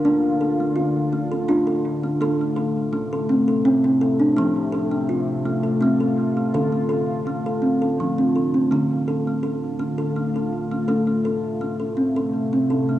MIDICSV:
0, 0, Header, 1, 3, 480
1, 0, Start_track
1, 0, Key_signature, -1, "minor"
1, 0, Tempo, 722892
1, 25, Time_signature, 3, 2, 24, 8
1, 8625, End_track
2, 0, Start_track
2, 0, Title_t, "Kalimba"
2, 0, Program_c, 0, 108
2, 32, Note_on_c, 0, 57, 76
2, 33, Note_on_c, 0, 62, 82
2, 269, Note_off_c, 0, 57, 0
2, 270, Note_on_c, 0, 69, 60
2, 395, Note_off_c, 0, 69, 0
2, 399, Note_on_c, 0, 57, 58
2, 502, Note_on_c, 0, 65, 72
2, 508, Note_off_c, 0, 57, 0
2, 743, Note_off_c, 0, 65, 0
2, 748, Note_on_c, 0, 57, 62
2, 799, Note_off_c, 0, 62, 0
2, 873, Note_off_c, 0, 57, 0
2, 873, Note_on_c, 0, 69, 66
2, 985, Note_off_c, 0, 69, 0
2, 985, Note_on_c, 0, 62, 70
2, 987, Note_on_c, 0, 65, 81
2, 1109, Note_on_c, 0, 69, 64
2, 1112, Note_off_c, 0, 62, 0
2, 1350, Note_off_c, 0, 69, 0
2, 1351, Note_on_c, 0, 57, 61
2, 1371, Note_off_c, 0, 65, 0
2, 1458, Note_off_c, 0, 57, 0
2, 1466, Note_on_c, 0, 57, 84
2, 1472, Note_on_c, 0, 69, 83
2, 1593, Note_off_c, 0, 57, 0
2, 1595, Note_off_c, 0, 69, 0
2, 1601, Note_on_c, 0, 57, 57
2, 1702, Note_on_c, 0, 69, 65
2, 1709, Note_off_c, 0, 57, 0
2, 1943, Note_off_c, 0, 69, 0
2, 1944, Note_on_c, 0, 57, 74
2, 2071, Note_off_c, 0, 57, 0
2, 2076, Note_on_c, 0, 69, 70
2, 2186, Note_off_c, 0, 69, 0
2, 2186, Note_on_c, 0, 60, 71
2, 2310, Note_on_c, 0, 69, 67
2, 2312, Note_off_c, 0, 60, 0
2, 2424, Note_on_c, 0, 60, 85
2, 2544, Note_off_c, 0, 60, 0
2, 2550, Note_off_c, 0, 69, 0
2, 2552, Note_on_c, 0, 60, 72
2, 2664, Note_off_c, 0, 60, 0
2, 2665, Note_on_c, 0, 69, 65
2, 2786, Note_on_c, 0, 62, 68
2, 2791, Note_off_c, 0, 69, 0
2, 2898, Note_on_c, 0, 57, 80
2, 2901, Note_off_c, 0, 62, 0
2, 2910, Note_on_c, 0, 53, 93
2, 3136, Note_on_c, 0, 69, 66
2, 3141, Note_off_c, 0, 57, 0
2, 3263, Note_on_c, 0, 57, 66
2, 3267, Note_off_c, 0, 69, 0
2, 3379, Note_off_c, 0, 57, 0
2, 3380, Note_on_c, 0, 65, 65
2, 3621, Note_off_c, 0, 65, 0
2, 3622, Note_on_c, 0, 57, 68
2, 3677, Note_off_c, 0, 53, 0
2, 3741, Note_on_c, 0, 69, 62
2, 3750, Note_off_c, 0, 57, 0
2, 3856, Note_on_c, 0, 60, 67
2, 3858, Note_off_c, 0, 69, 0
2, 3866, Note_on_c, 0, 57, 86
2, 3987, Note_off_c, 0, 60, 0
2, 3987, Note_on_c, 0, 69, 66
2, 4221, Note_off_c, 0, 57, 0
2, 4229, Note_off_c, 0, 69, 0
2, 4229, Note_on_c, 0, 57, 61
2, 4342, Note_off_c, 0, 57, 0
2, 4345, Note_on_c, 0, 50, 80
2, 4347, Note_on_c, 0, 69, 79
2, 4465, Note_on_c, 0, 57, 60
2, 4472, Note_off_c, 0, 69, 0
2, 4576, Note_on_c, 0, 69, 73
2, 4580, Note_off_c, 0, 57, 0
2, 4819, Note_off_c, 0, 69, 0
2, 4825, Note_on_c, 0, 57, 69
2, 4952, Note_off_c, 0, 57, 0
2, 4954, Note_on_c, 0, 69, 65
2, 5058, Note_on_c, 0, 60, 62
2, 5065, Note_off_c, 0, 69, 0
2, 5114, Note_off_c, 0, 50, 0
2, 5188, Note_off_c, 0, 60, 0
2, 5191, Note_on_c, 0, 69, 59
2, 5312, Note_on_c, 0, 53, 83
2, 5431, Note_off_c, 0, 69, 0
2, 5433, Note_on_c, 0, 60, 63
2, 5545, Note_off_c, 0, 60, 0
2, 5548, Note_on_c, 0, 69, 58
2, 5671, Note_on_c, 0, 60, 62
2, 5673, Note_off_c, 0, 69, 0
2, 5694, Note_off_c, 0, 53, 0
2, 5784, Note_off_c, 0, 60, 0
2, 5784, Note_on_c, 0, 57, 71
2, 5791, Note_on_c, 0, 50, 85
2, 6024, Note_off_c, 0, 57, 0
2, 6028, Note_on_c, 0, 69, 61
2, 6153, Note_off_c, 0, 69, 0
2, 6157, Note_on_c, 0, 57, 60
2, 6261, Note_on_c, 0, 69, 62
2, 6267, Note_off_c, 0, 57, 0
2, 6503, Note_off_c, 0, 69, 0
2, 6503, Note_on_c, 0, 57, 60
2, 6559, Note_off_c, 0, 50, 0
2, 6627, Note_on_c, 0, 69, 62
2, 6631, Note_off_c, 0, 57, 0
2, 6743, Note_off_c, 0, 69, 0
2, 6748, Note_on_c, 0, 57, 63
2, 6874, Note_off_c, 0, 57, 0
2, 6878, Note_on_c, 0, 69, 58
2, 7115, Note_on_c, 0, 57, 61
2, 7116, Note_off_c, 0, 69, 0
2, 7221, Note_off_c, 0, 57, 0
2, 7225, Note_on_c, 0, 69, 74
2, 7229, Note_on_c, 0, 57, 79
2, 7345, Note_off_c, 0, 57, 0
2, 7353, Note_off_c, 0, 69, 0
2, 7353, Note_on_c, 0, 57, 56
2, 7466, Note_off_c, 0, 57, 0
2, 7471, Note_on_c, 0, 69, 61
2, 7710, Note_off_c, 0, 69, 0
2, 7710, Note_on_c, 0, 57, 64
2, 7834, Note_on_c, 0, 69, 56
2, 7836, Note_off_c, 0, 57, 0
2, 7947, Note_off_c, 0, 69, 0
2, 7948, Note_on_c, 0, 60, 58
2, 8075, Note_off_c, 0, 60, 0
2, 8077, Note_on_c, 0, 69, 59
2, 8317, Note_off_c, 0, 69, 0
2, 8320, Note_on_c, 0, 60, 60
2, 8431, Note_off_c, 0, 60, 0
2, 8435, Note_on_c, 0, 69, 64
2, 8559, Note_off_c, 0, 69, 0
2, 8559, Note_on_c, 0, 57, 59
2, 8625, Note_off_c, 0, 57, 0
2, 8625, End_track
3, 0, Start_track
3, 0, Title_t, "Ambient pad"
3, 0, Program_c, 1, 92
3, 0, Note_on_c, 1, 50, 77
3, 0, Note_on_c, 1, 65, 85
3, 28, Note_on_c, 1, 57, 70
3, 1439, Note_off_c, 1, 50, 0
3, 1444, Note_off_c, 1, 65, 0
3, 1461, Note_on_c, 1, 64, 79
3, 1462, Note_on_c, 1, 48, 70
3, 2887, Note_off_c, 1, 64, 0
3, 2903, Note_on_c, 1, 65, 88
3, 4316, Note_off_c, 1, 48, 0
3, 4346, Note_on_c, 1, 50, 72
3, 5758, Note_off_c, 1, 65, 0
3, 5759, Note_off_c, 1, 57, 0
3, 5771, Note_off_c, 1, 50, 0
3, 5790, Note_on_c, 1, 50, 75
3, 5793, Note_on_c, 1, 57, 69
3, 5798, Note_on_c, 1, 65, 78
3, 7215, Note_off_c, 1, 50, 0
3, 7219, Note_off_c, 1, 65, 0
3, 7236, Note_on_c, 1, 48, 76
3, 7240, Note_on_c, 1, 64, 88
3, 8625, Note_off_c, 1, 48, 0
3, 8625, Note_off_c, 1, 57, 0
3, 8625, Note_off_c, 1, 64, 0
3, 8625, End_track
0, 0, End_of_file